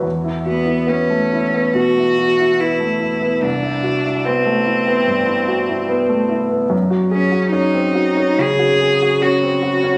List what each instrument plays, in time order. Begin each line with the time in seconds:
0.02 grand piano E2
0.24 grand piano E4
0.46 cello B3, grand piano F#4
0.66 grand piano E4
0.87 grand piano B3, cello C#4
1.10 grand piano A3
1.33 grand piano E4
1.54 grand piano B3
1.75 grand piano B2, cello F#4
1.97 grand piano E4
2.18 grand piano F#4
2.39 grand piano E4
2.60 grand piano B3, cello E4
2.80 grand piano A3
3.00 grand piano E4
3.22 grand piano B3
3.42 grand piano C2, cello D4
3.63 grand piano E4
3.83 grand piano F#4
4.04 grand piano E4
4.25 grand piano B3, cello C4
4.46 grand piano A3
4.66 grand piano E4
4.87 grand piano B3
5.08 grand piano G2
5.26 grand piano E4
5.48 grand piano F#4
5.69 grand piano E4
5.89 grand piano B3
6.09 grand piano A3
6.29 grand piano E4
6.49 grand piano B3
6.70 grand piano F#2
6.90 grand piano F#4
7.11 cello C#4, grand piano G#4
7.32 grand piano F#4
7.51 grand piano C#4, cello D#4
7.74 grand piano C4
7.95 grand piano F#4
8.17 grand piano C#4
8.38 grand piano C#3, cello G#4
8.59 grand piano F#4
8.81 grand piano G#4
9.02 grand piano F#4
9.21 grand piano C#4, cello F#4
9.43 grand piano C4
9.62 grand piano F#4
9.83 grand piano C#4